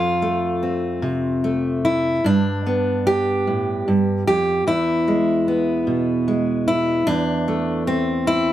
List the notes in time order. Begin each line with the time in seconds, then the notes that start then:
Already playing: F2 A3 F4
0.22 A3
0.63 C4
1.02 C3
1.44 A3
1.85 E4
2.24 G2 D4
2.66 B3
3.07 G4
3.47 A2
3.88 G2
4.27 F2 G4
4.67 E2 E4
5.08 G#3
5.48 B3
5.87 B2
6.28 G#3
6.68 E4
7.07 E2 D4
7.48 A3
7.87 C4
8.27 E4